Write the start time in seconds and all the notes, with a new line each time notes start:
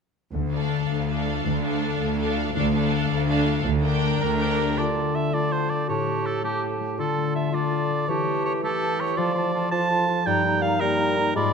0.34 D2 D3
0.52 D4 A4 F5
0.71 A4
0.89 D2 D5
1.08 D4 A4 F5
1.27 F4
1.45 D2 D3
1.64 D4 A4 F5
1.82 A4
2.00 D2 D5
2.19 D4 A4 F5
2.37 F4
2.55 D2 D3 D4 A4 F5
2.73 D4 A4 F5
2.91 A4
3.09 D2 D5
3.27 D4 A4 F5
3.45 F4
3.63 D2 D3
3.82 D4 A#4 G5
4.00 A#4
4.20 D2 A#4 D5
4.38 D4 A#4 G5
4.58 G4
4.77 D3 F4 D5 A5
4.96 A3
5.15 A4 E5
5.33 A3 F4 D5 A5
5.52 F4 C5
5.70 A3 D5
5.88 A2 G4 C#5 A5
6.07 A3
6.25 A4
6.43 A3 G4 A5
6.62 G4
6.80 A3
6.99 D3 F4 A4 A5
7.17 A3
7.35 A4 E5
7.52 A3 F4 D5 A5
7.71 F4
7.90 A3
8.08 E3 G4 C#5 A5
8.26 A3
8.45 A4 C#5
8.63 A3 G4 A4 A5
8.82 G4
8.99 A3 C#5
9.17 F3 F4 D5 A5
9.35 F4 A5
9.54 F4 A4 A5
9.71 F3 F4 A5
9.90 F4 A4 A5
10.08 F4 A5
10.26 G2 G3 D#4 G5 A#5
10.44 A#3 D#4 A#5
10.62 D#4 G4 F5 A#5
10.80 G3 A#3 D#4 A#4 A#5
10.98 D#4 A#5
11.17 A#3 D#4 A#5
11.35 G#2 G#3 F4 D5 B5